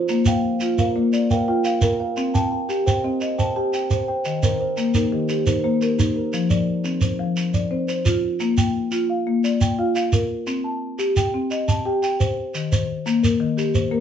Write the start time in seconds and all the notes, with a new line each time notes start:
Already playing: C5
0.09 A#3, shekere
0.25 A#3 F5 G5, shekere
0.60 F4, shekere
0.78 A#4 F5, shekere
0.96 A#3 D5
1.13 D5, shekere
1.31 A#4 F5 G5, shekere
1.48 F4 G5
1.65 F5, shekere
1.81 A#4, shekere
2.00 F5
2.17 C4, shekere
2.34 C4 G5 A5, shekere
2.52 A5
2.69 G4, shekere
2.86 C5 G5, shekere
3.04 C4 D#5
3.21 D#5, shekere
3.38 C5 G5 A5, shekere
3.56 G4 A5
3.73 G5, shekere
3.90 C5, shekere
4.08 G5
4.25 D#3, shekere
4.43 D#3 A#4 C5, shekere
4.61 C5
4.77 A#3, shekere
4.94 D#4 A#4, shekere
5.12 D#3 G4
5.29 G4, shekere
5.47 D#4 A#4 C5, shekere
5.64 A#3 C5
5.82 A#4, shekere
5.99 D#4, shekere
6.16 A#4
6.33 F3, shekere
6.50 D5, shekere
6.84 C4, shekere
7.01 C5, shekere
7.19 F3
7.37 shekere
7.54 D5, shekere
7.71 C4 C5
7.88 C5, shekere
8.05 F4, shekere
8.40 A#3, shekere
8.58 G5, shekere
8.92 F4, shekere
9.10 F5
9.27 A#3
9.44 D5, shekere
9.61 G5, shekere
9.79 F4 F5
9.96 F5, shekere
10.12 A#4, shekere
10.47 C4, shekere
10.64 A5
10.99 G4, shekere
11.16 G5, shekere
11.34 C4
11.51 D#5, shekere
11.68 A5, shekere
11.85 G4 G5
12.03 G5, shekere
12.20 C5, shekere
12.55 D#3, shekere
12.72 C5, shekere
13.06 A#3, shekere
13.23 A#4, shekere
13.40 D#3
13.57 G4, shekere
13.74 C5, shekere
13.92 A#3 A#4